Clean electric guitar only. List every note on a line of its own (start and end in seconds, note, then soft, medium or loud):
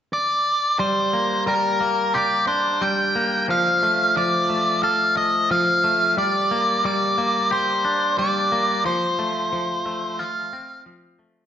0.79 1.46 G3 soft
1.13 1.79 A#3 soft
1.47 2.80 G3 soft
1.81 3.14 A#3 soft
2.15 3.49 G4 soft
2.48 5.98 D4 soft
2.81 3.49 G3 soft
3.16 3.49 A#3 soft
3.49 4.15 F3 soft
3.83 4.48 A3 soft
4.17 5.50 F3 soft
4.50 5.83 A3 soft
4.84 6.18 A4 soft
5.51 6.17 F3 soft
5.84 6.18 A3 soft
6.17 6.84 G3 soft
6.51 7.17 A#3 soft
6.85 8.18 G3 soft
7.18 8.51 A#3 soft
7.51 8.85 G4 soft
7.85 8.85 D4 soft
8.19 8.85 G3 soft
8.52 8.85 A#3 soft
8.85 9.51 F3 soft
9.19 9.84 A3 soft
9.53 10.85 F3 soft
9.86 11.18 A3 soft
10.19 11.46 F4 soft
10.53 11.46 C4 soft
10.86 11.46 F3 soft
11.19 11.46 A3 soft